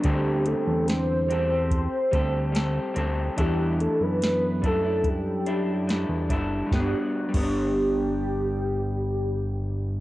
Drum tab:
CC |----------------|----------------|---x------------|
HH |x-x-x-x-x-x-x-x-|x-x-x-x-x-x-x-x-|----------------|
SD |----o-------o---|----o-------o---|o---------------|
BD |o-------o-o-----|o-----o-o-----o-|o--o------------|